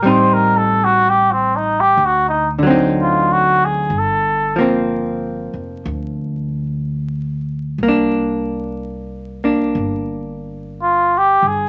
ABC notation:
X:1
M:4/4
L:1/16
Q:"Swing" 1/4=62
K:Cmix
V:1 name="Muted trumpet"
c B A ^F G C _E G F E z2 (3=F2 ^F2 ^G2 | A2 z12 z2 | z12 (3F2 G2 ^G2 |]
V:2 name="Hollow-body jazz guitar"
[G,C_E]8 z2 [D,^F,CE]6 | z2 [F,B,C]12- [F,B,C]2 | [B,D]6 [B,D]8- [B,D]2 |]
V:3 name="Upright bass" clef=bass
A,,,8 D,,8 | G,,,6 F,,,2 D,,8 | C,,8 G,,,6 G,,,2 |]